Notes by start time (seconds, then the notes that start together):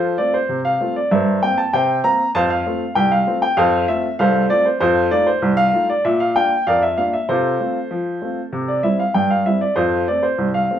Already playing: F3 F4 A4 C5
0.18 A3 C4 F4 D5
0.34 C5
0.49 C3
0.65 F5
0.80 A3 C4 F4
0.96 D5
1.11 G2 A#4 C5 E5
1.42 A#3 C4 G5
1.58 A5
1.73 C3 C5 E5 G5
2.04 A#3 C4 A#5
2.35 F2 C5 F5 A5
2.50 F5
2.66 A3 C4 F4
2.95 C2 G5
3.11 F5
3.27 A3 C4 F4
3.42 G5
3.57 F2 A4 C5 F5
3.88 A3 C4 F4 E5
4.19 C2 A4 C5 F5
4.50 A3 C4 F4 D5
4.66 C5
4.80 F2 F4 A4 C5
5.11 A3 D#4 F4 D5
5.27 C5
5.42 C2
5.57 F5
5.73 A3 D#4 F4
5.90 D5
6.05 A#2 E5
6.20 F5
6.36 A#3 D4 F4 G5
6.67 F2 A#4 D5 F5
6.83 E5
6.97 A#3 D4 F4 F5
7.13 E5
7.29 C3 F4 A4 C5
7.60 A3 C4 F4
7.91 F3
8.22 A3 C4 F4
8.53 C3
8.68 D5
8.83 G3 C4 E4 E5
8.99 F5
9.14 G2 G5
9.30 F5
9.46 G3 C4 E4 E5
9.61 D5
9.76 F2 F4 A4 C5
10.08 A3 C4 D5
10.23 C5
10.38 C2
10.54 F5
10.70 A3 C4